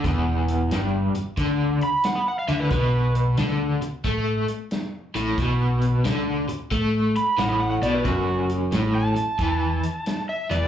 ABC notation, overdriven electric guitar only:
X:1
M:4/4
L:1/8
Q:"Swing" 1/4=90
K:Alyd
V:1 name="Overdriven electric guitar" clef=bass
E,,2 =G,, z =D, z2 D, | B,,2 =D, z A, z2 A,, | B,,2 =D, z A, z A,, B,, | F,,2 A,, z E, z2 E,, |]